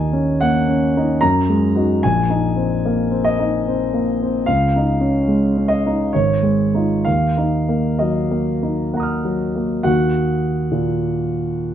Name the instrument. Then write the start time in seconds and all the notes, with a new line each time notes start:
grand piano
Already playing: D#2 D#4 G#5
0.13 C#4
0.41 A#3 F#5
0.69 C#4
0.97 D#4
1.21 F#2 A#5
1.50 G#3
1.75 D#4 F#4
2.03 A#1 G#5
2.30 D#4
2.56 C4
2.86 A#3
3.11 C4
3.24 D#5
3.39 D#4
3.68 C4
3.94 A#3
4.23 C4
4.46 C#2 F5
4.76 D#4
5.01 C#4
5.28 G#3
5.57 C#4
5.68 D#5
5.87 D#4
6.13 G#1 C#5
6.43 G#3
6.74 D#4 F4
7.05 D#2 F5
7.37 D#4
7.69 A#3
7.99 F#3 D#5
8.31 A#3
8.62 D#4
8.94 A#3 F#5 A#5
9.00 D#6 F6
9.25 F#3
9.55 A#3
9.83 D#2 F#4 F#5
10.71 A#2